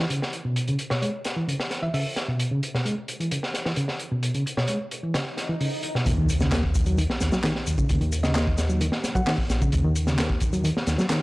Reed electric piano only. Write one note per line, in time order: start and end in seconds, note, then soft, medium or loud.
0.10 0.19 C#3 medium
0.45 0.67 B2 medium
0.68 0.77 C#3 medium
0.91 1.02 B2 medium
1.02 1.11 G#3 medium
1.37 1.48 E3 medium
1.48 1.53 C#3 medium
1.82 1.88 E3 medium
1.94 2.02 C#3 medium
2.28 2.50 B2 medium
2.51 2.60 C#3 medium
2.74 2.85 B2 medium
2.86 2.94 G#3 medium
3.20 3.31 E3 medium
3.32 3.37 C#3 medium
3.66 3.71 E3 medium
3.77 3.86 C#3 medium
4.12 4.34 B2 medium
4.35 4.43 C#3 medium
4.57 4.68 B2 medium
4.69 4.77 G#3 medium
5.03 5.14 E3 medium
5.15 5.20 C#3 medium
5.49 5.54 E3 medium
5.60 5.69 C#3 medium
5.95 6.06 B2 medium
6.18 6.26 D#3 medium
6.41 6.52 C#3 medium
6.52 6.61 A#3 medium
6.87 6.97 F#3 medium
6.98 7.03 D#3 medium
7.33 7.37 F#3 loud
7.44 7.52 D#3 medium
7.78 8.00 C#3 medium
8.01 8.09 D#3 medium
8.24 8.35 C#3 medium
8.35 8.44 A#3 medium
8.70 8.81 F#3 medium
8.81 8.86 D#3 medium
9.15 9.20 F#3 loud
9.27 9.35 D#3 medium
9.61 9.83 C#3 medium
9.84 9.93 D#3 medium
10.07 10.18 C#3 medium
10.18 10.27 A#3 medium
10.53 10.64 F#3 medium
10.64 10.69 D#3 medium
10.98 11.04 F#3 medium
11.10 11.18 D#3 medium